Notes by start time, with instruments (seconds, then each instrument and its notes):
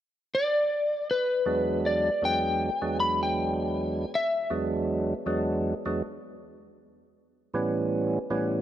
0.35 electric slide guitar D5
1.11 electric slide guitar B4
1.46 tonewheel organ E2 F#3 G#3 B3 D4
1.86 electric slide guitar D5
2.22 tonewheel organ E2 F#3 G#3 B3 D4, electric slide guitar G5
2.82 tonewheel organ E2 F#3 G#3 B3 D4
3.00 electric slide guitar B5
3.23 electric slide guitar G5
4.15 electric slide guitar E5
4.50 tonewheel organ E2 F#3 G#3 B3 D4
5.26 tonewheel organ E2 F#3 G#3 B3 D4
5.85 tonewheel organ E2 F#3 G#3 B3 D4
7.54 tonewheel organ A2 E3 G3 B3 C#4
8.30 tonewheel organ A2 E3 G3 B3 C#4